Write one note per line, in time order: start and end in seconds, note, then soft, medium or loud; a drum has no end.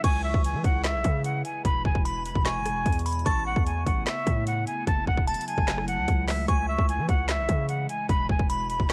0.04 0.33 C#2 loud
0.04 1.63 C#3 medium
0.04 3.23 E3 medium
0.04 1.63 G#3 medium
0.04 3.23 E4 loud
0.04 0.22 G#5 loud
0.04 1.21 C#6 loud
0.04 kick loud
0.04 closed hi-hat medium
0.04 crash loud
0.24 0.42 E5 medium
0.34 0.56 C#2 loud
0.34 kick loud
0.44 0.62 G#5 medium
0.44 closed hi-hat medium
0.54 0.64 E3 loud
0.64 0.96 C#2 loud
0.64 0.82 F#5 medium
0.64 kick loud
0.64 closed hi-hat medium
0.84 1.22 E5 medium
0.84 snare loud
0.84 clap loud
0.84 closed hi-hat medium
0.95 1.04 B1 loud
1.04 1.43 C#3 loud
1.04 kick loud
1.04 closed hi-hat medium
1.25 1.43 F#5 medium
1.25 closed hi-hat medium
1.45 1.63 G#5 medium
1.45 closed hi-hat medium
1.65 1.84 E1 loud
1.65 3.25 B2 medium
1.65 3.25 G#3 medium
1.65 1.83 B5 loud
1.65 kick loud
1.65 closed hi-hat medium
1.85 2.33 E1 loud
1.85 2.03 G#5 medium
1.85 kick loud
1.95 kick loud
2.05 2.43 B5 medium
2.05 2.23 B5 medium
2.05 closed hi-hat medium
2.25 2.43 B5 medium
2.25 closed hi-hat medium
2.35 2.57 E1 loud
2.35 kick loud
2.45 2.97 G#5 medium
2.45 3.02 C#6 medium
2.45 snare loud
2.45 clap loud
2.45 closed hi-hat medium
2.56 2.72 F#1 loud
2.66 cross-stick medium
2.66 closed hi-hat loud
2.71 2.85 E1 loud
2.86 3.24 E2 loud
2.86 kick loud
2.86 closed hi-hat medium
2.93 closed hi-hat medium
2.99 closed hi-hat medium
3.06 3.25 B5 medium
3.06 closed hi-hat medium
3.06 open hi-hat medium
3.13 closed hi-hat soft
3.19 closed hi-hat soft
3.26 3.55 A1 loud
3.26 8.05 C#3 medium
3.26 6.45 A3 medium
3.26 4.86 B3 medium
3.26 8.05 E4 loud
3.26 3.44 A5 loud
3.26 4.43 C#6 loud
3.26 kick loud
3.26 closed hi-hat medium
3.46 3.64 F#5 loud
3.56 3.85 E2 loud
3.56 kick loud
3.66 3.84 G#5 medium
3.66 closed hi-hat medium
3.86 4.06 A1 loud
3.86 4.04 F#5 medium
3.86 kick loud
3.86 closed hi-hat medium
4.07 4.44 E5 medium
4.07 snare loud
4.07 clap loud
4.07 closed hi-hat medium
4.27 4.65 A2 loud
4.27 kick loud
4.27 closed hi-hat medium
4.47 4.65 F#5 medium
4.47 closed hi-hat medium
4.67 4.85 G#5 medium
4.67 closed hi-hat medium
4.87 5.06 F#1 loud
4.87 6.47 F#3 medium
4.87 5.05 A5 loud
4.87 kick loud
4.87 closed hi-hat medium
5.07 5.36 E1 loud
5.07 5.25 F#5 medium
5.07 kick loud
5.17 kick loud
5.27 6.04 A5 loud
5.27 5.45 A5 medium
5.27 closed hi-hat medium
5.34 closed hi-hat medium
5.41 closed hi-hat medium
5.47 5.85 G#5 medium
5.47 closed hi-hat medium
5.58 5.99 F#1 loud
5.58 kick medium
5.68 snare loud
5.68 clap loud
5.68 closed hi-hat medium
5.78 cross-stick loud
5.88 6.26 F#5 medium
5.88 closed hi-hat medium
5.98 6.07 C#2 loud
6.08 6.47 C#2 loud
6.08 kick loud
6.08 closed hi-hat medium
6.28 6.46 E5 medium
6.28 snare medium
6.28 clap medium
6.28 open hi-hat medium
6.48 6.77 C#2 loud
6.48 8.93 E3 medium
6.48 8.93 G#3 medium
6.48 6.66 G#5 loud
6.48 7.65 C#6 loud
6.48 kick loud
6.48 closed hi-hat medium
6.68 6.86 E5 medium
6.78 7.00 C#2 loud
6.78 kick loud
6.89 7.07 G#5 medium
6.89 closed hi-hat medium
6.99 7.08 E3 loud
7.09 7.40 C#2 loud
7.09 7.27 F#5 medium
7.09 kick loud
7.09 closed hi-hat medium
7.29 7.67 E5 medium
7.29 snare loud
7.29 clap loud
7.29 closed hi-hat medium
7.39 7.48 B1 loud
7.49 7.88 C#3 loud
7.49 kick loud
7.49 closed hi-hat medium
7.69 7.87 F#5 medium
7.69 closed hi-hat medium
7.89 8.07 G#5 medium
7.89 closed hi-hat medium
8.09 8.29 E1 loud
8.09 8.93 B2 medium
8.09 8.93 E4 loud
8.09 8.27 B5 loud
8.09 kick loud
8.09 closed hi-hat medium
8.29 8.78 E1 loud
8.29 8.48 G#5 medium
8.29 kick loud
8.40 kick loud
8.50 8.87 B5 medium
8.50 8.68 B5 medium
8.50 closed hi-hat medium
8.70 8.88 B5 medium
8.70 closed hi-hat medium
8.80 8.93 E1 loud
8.80 kick loud
8.90 8.93 G#5 medium